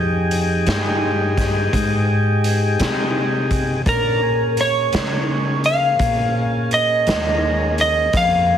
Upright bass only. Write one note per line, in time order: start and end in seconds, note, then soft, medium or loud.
0.00 0.63 F2 medium
0.67 1.70 G2 medium
1.74 2.77 G#2 medium
2.80 3.83 C3 medium
3.86 4.90 A#2 medium
4.94 5.97 C#3 medium
6.00 7.03 A#2 medium
7.07 8.11 D#2 medium
8.13 8.58 F2 medium